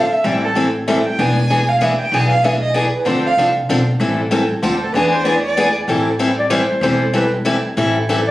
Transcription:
Already playing: violin F5
0.13 violin E5
0.24 upright bass A1, steel-string acoustic guitar E3 G3 C4 E4 A4, violin D5
0.44 violin A4
0.55 steel-string acoustic guitar E3 G3 C4 E4 A4
0.88 steel-string acoustic guitar E3 G3 C4 E4 A4, violin E5
1.06 violin G5
1.19 upright bass E1, steel-string acoustic guitar E3 B3 D4 G#4, violin G#5
1.50 steel-string acoustic guitar E3 B3 D4 G#4
1.69 violin F5
1.81 steel-string acoustic guitar E3 B3 D4 G#4, violin E5
2.00 violin G5
2.12 upright bass B1, steel-string acoustic guitar E3 B3 D4 G#4, violin G#5
2.30 violin F5
2.44 steel-string acoustic guitar E3 B3 D4 G#4, violin E5
2.62 violin D#5
2.74 steel-string acoustic guitar E3 B3 D4 G#4, violin D5
2.94 violin B4
3.05 upright bass D2, steel-string acoustic guitar D3 F3 C4 D4 A4, violin C5
3.26 violin F5
3.37 upright bass C2, steel-string acoustic guitar D3 F3 C4 D4 A4
3.69 upright bass B1, steel-string acoustic guitar D3 F3 C4 D4 A4
4.00 upright bass A1, steel-string acoustic guitar E3 G3 C4 E4 A4
4.31 steel-string acoustic guitar E3 G3 C4 E4 A4
4.62 upright bass D2, steel-string acoustic guitar D3 F3 C4 D4 A4, violin C5
4.81 violin A4
4.93 upright bass E2, steel-string acoustic guitar E3 B3 D4 G#4, violin B4
5.12 violin C5
5.24 steel-string acoustic guitar E3 B3 D4 G#4, violin D5
5.43 violin D5
5.57 steel-string acoustic guitar E3 B3 D4 G#4
5.88 upright bass A1, steel-string acoustic guitar E3 G3 C4 E4 A4
6.19 steel-string acoustic guitar E3 G3 C4 E4 A4
6.39 clarinet D5
6.50 steel-string acoustic guitar E3 G3 C4 E4 A4, clarinet C5
6.81 upright bass E1, steel-string acoustic guitar E3 G3 C4 E4 A4, clarinet C5
7.13 steel-string acoustic guitar E3 G3 C4 E4 A4, clarinet B4
7.45 steel-string acoustic guitar E3 G3 C4 E4 A4
7.77 upright bass A1, steel-string acoustic guitar E3 G3 C4 E4 A4
8.09 steel-string acoustic guitar E3 G3 C4 E4 A4

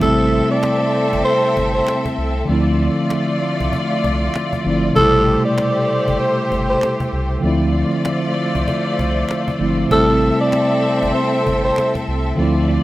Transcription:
Already playing: analog synth pad E6
0.00 sub bass A1, tine electric piano C3 G3 A3 C4, string section C4 A4 E5, analog synth pad A4 G5 C6, tenor saxophone A4, cajon bass
0.05 tine electric piano E4
0.33 cajon slap
0.51 tenor saxophone D5
0.63 finger snap, cajon slap
0.82 cajon slap
0.94 cajon slap
1.13 sub bass G1, cajon bass
1.24 tenor saxophone C5
1.44 cajon slap
1.57 sub bass G1, cajon bass
1.74 tenor saxophone C5
1.87 finger snap, cajon slap
2.05 cajon bass
2.18 sub bass C2
2.37 cajon slap
2.45 sub bass D2, tine electric piano D3 F3 A3, string section A3 F4 D5, analog synth pad D5 E5
2.49 tine electric piano C4 E4, cajon slap
2.80 cajon slap
2.98 cajon slap
3.10 finger snap, cajon slap
3.30 cajon slap
3.42 cajon slap
3.60 sub bass C2, cajon bass
3.73 cajon bass
3.91 cajon slap
4.04 sub bass C2, cajon bass
4.34 finger snap, cajon slap
4.53 cajon bass
4.64 sub bass G1, tine electric piano D3 F3 A3 C4 E4
4.84 cajon slap
4.93 sub bass A1, tine electric piano C3 G3 A3, string section A3 G4 C5, tenor saxophone A4, cajon bass
4.97 tine electric piano B2 E4, analog synth pad A4 G5 C6 E6
5.28 cajon slap
5.45 tenor saxophone D5, cajon slap
5.58 finger snap, cajon slap
5.77 cajon slap
5.89 cajon slap
6.08 sub bass G1, cajon bass
6.19 tenor saxophone C5, cajon slap
6.52 sub bass G1, cajon bass
6.69 tenor saxophone C5
6.81 finger snap, cajon slap
7.00 cajon bass
7.13 sub bass C2, cajon slap
7.32 cajon slap
7.40 sub bass D2, tine electric piano D3 F3 A3, string section A3 F4 D5
7.44 tine electric piano C4 E4, analog synth pad C5 E5 D6 E6, cajon slap
7.64 cajon slap
7.75 cajon slap
8.05 finger snap, cajon slap
8.24 cajon slap
8.37 cajon slap
8.55 sub bass C2, cajon bass
8.68 cajon bass
8.99 sub bass C2, cajon bass
9.29 finger snap, cajon slap
9.48 cajon bass
9.59 sub bass G1, tine electric piano D3 F3 A3 C4 E4
9.88 sub bass A1, tine electric piano C3 G3 A3, string section C4 A4 E5, tenor saxophone A4, cajon bass
9.92 tine electric piano C4 E4, analog synth pad A4 G5 C6
10.23 cajon slap
10.40 tenor saxophone D5
10.52 finger snap, cajon slap
10.84 cajon slap
11.03 sub bass G1, cajon bass
11.14 tenor saxophone C5
11.34 cajon slap
11.47 sub bass G1, cajon bass
11.64 tenor saxophone C5
11.76 finger snap, cajon slap
11.95 cajon bass
12.08 sub bass C2, cajon slap
12.26 cajon slap
12.35 sub bass D2, tine electric piano D3 F3 A3, string section A3 F4 D5, analog synth pad D5 E5, cajon slap
12.40 tine electric piano C4 E4
12.59 cajon slap
12.70 cajon slap

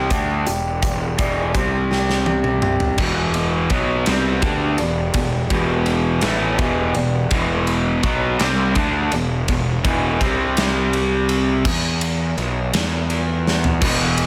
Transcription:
Already playing: steel-string acoustic guitar E2 G3 G4
0.10 picked electric bass D2, overdriven electric guitar D3 A3 D4, steel-string acoustic guitar G3, kick, closed hi-hat
0.46 picked electric bass E1, overdriven electric guitar E2 B2, steel-string acoustic guitar G4, closed hi-hat
0.82 picked electric bass E1, steel-string acoustic guitar E2, overdriven electric guitar E2 B2, kick, closed hi-hat
1.18 picked electric bass E1, overdriven electric guitar E2 B2 E3, steel-string acoustic guitar G3, kick, closed hi-hat
1.54 picked electric bass C2, overdriven electric guitar C3 G3 C4, steel-string acoustic guitar C3, kick, closed hi-hat
1.91 steel-string acoustic guitar G4, snare
2.10 snare
2.26 steel-string acoustic guitar G3, high tom
2.44 mid tom
2.62 steel-string acoustic guitar G4, mid tom
2.80 floor tom
2.98 picked electric bass E1, steel-string acoustic guitar E2, overdriven electric guitar E2 B2 E3, kick, crash
3.34 steel-string acoustic guitar B2, ride
3.70 picked electric bass B1, overdriven electric guitar B2 F#3 B3, kick, ride
4.06 picked electric bass C2, overdriven electric guitar C3 G3 C4, snare, ride
4.42 picked electric bass D2, overdriven electric guitar D3 A3 D4, steel-string acoustic guitar G4, kick, ride
4.78 picked electric bass E1, overdriven electric guitar E2 B2, steel-string acoustic guitar G3, ride
5.13 picked electric bass E1, steel-string acoustic guitar E2, overdriven electric guitar E2 B2, kick, ride
5.50 picked electric bass E1, overdriven electric guitar E2 B2 E3, steel-string acoustic guitar B2, kick, ride
5.86 steel-string acoustic guitar G3, ride
6.21 picked electric bass A1, overdriven electric guitar A2 E3 A3, steel-string acoustic guitar B3, snare, ride
6.58 picked electric bass E1, overdriven electric guitar E2 B2 E3, steel-string acoustic guitar G4, kick, ride
6.94 picked electric bass E1, overdriven electric guitar E2 B2, steel-string acoustic guitar G3, ride
7.30 picked electric bass E1, overdriven electric guitar E2 B2 E3, kick, ride
7.67 ride
8.03 picked electric bass B1, overdriven electric guitar B2 F#3 B3, kick, ride
8.38 picked electric bass C2, overdriven electric guitar C3 G3 C4, snare, ride
8.75 picked electric bass D2, overdriven electric guitar D3 A3 D4, kick, ride
9.12 picked electric bass E1, overdriven electric guitar E2 B2, ride
9.48 picked electric bass E1, overdriven electric guitar E2 B2, kick, ride
9.84 picked electric bass E1, overdriven electric guitar E2 B2 E3, kick, ride
10.20 picked electric bass C2, overdriven electric guitar C3 G3 C4, kick, ride
10.57 snare, ride
10.93 ride
11.29 ride
11.65 picked electric bass E2, kick, crash
12.01 ride
12.37 picked electric bass B1, ride
12.73 picked electric bass E2, snare, ride
13.10 ride
13.47 snare
13.64 floor tom
13.81 picked electric bass E1, overdriven electric guitar E2 B2 E3, kick, crash
14.18 ride

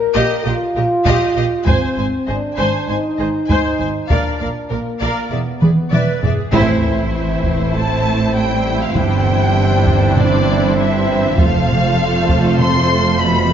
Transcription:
Already playing: french horn section A#4
0.14 double bass section A#1, cello section A#2, viola section G4, violin section D#5 F5
0.44 double bass section A#1, cello section A#2, french horn section F4, viola section G4, violin section D#5 F5
0.76 double bass section A#1, cello section A#2, viola section G4, violin section A#4 D#5
1.05 double bass section A#1, cello section A#2, viola section G4, violin section D#5 F5, taiko
1.36 double bass section A#1, cello section A#2, viola section G4, violin section D#5 F5
1.66 double bass section G#1, cello section G#2, french horn section C4, viola section C5, violin section C5 G#5, taiko
1.97 double bass section G#1, cello section G#2, viola section C5, violin section C5 G#5
2.27 double bass section G#1, cello section G#2, french horn section D4, violin section G#4 D#5, viola section C5
2.57 double bass section G#1, cello section G#2, violin section C5 G#5, viola section C5
2.88 double bass section G#1, cello section G#2, french horn section D#4, violin section C5 G#5, viola section C5
3.19 double bass section G#1, cello section G#2, violin section G#4 D#5, viola section C5
3.49 double bass section G#1, cello section G#2, violin section C5 G#5, viola section C5, taiko
3.80 double bass section G#1, cello section G#2, violin section C5 G#5, viola section C5
4.09 double bass section A#1, cello section A#2, french horn section D4, viola section A#4, violin section D5 F5, taiko
4.39 double bass section A#1, cello section A#2, viola section A#4, violin section D5 F5
4.70 double bass section A#1, cello section A#2, french horn section A#3, violin section A#4 D5, viola section A#4
5.00 double bass section A#1, cello section A#2, viola section A#4, violin section D5 F5
5.30 double bass section E1, cello section E2, french horn section B3, viola section G#4, violin section D5 E5
5.60 double bass section E1, cello section E2, viola section G#4, violin section B4 D5, taiko mid
5.92 double bass section E1, cello section E2, viola section B4, violin section D5 E5, taiko mid
6.22 double bass section E1, cello section E2, viola section G#4, violin section D5 E5, taiko low
6.52 double bass section A1, cello section A2, trombone section E3 C4, french horn section E3, viola section A3 E4, violin section E4 C5 E5, taiko, sub drop
7.44 taiko
7.73 french horn section A3, violin section A5
8.35 french horn section G3, violin section G5
8.80 french horn section F3, violin section F5
8.95 double bass section G1, cello section G2, french horn section G3, viola section D4, violin section G5, taiko
9.26 taiko low-mid
9.87 taiko
10.17 french horn section D3, violin section D5, taiko low-mid
10.77 french horn section E3, violin section E5
11.38 double bass section F1, cello section F2, french horn section F3, trombone section F3 A3, viola section A3 F4, violin section A4 C5 F5, taiko
11.68 taiko low-mid
12.29 taiko
12.59 french horn section C4, violin section C6, taiko low-mid
13.20 french horn section B2, violin section B5

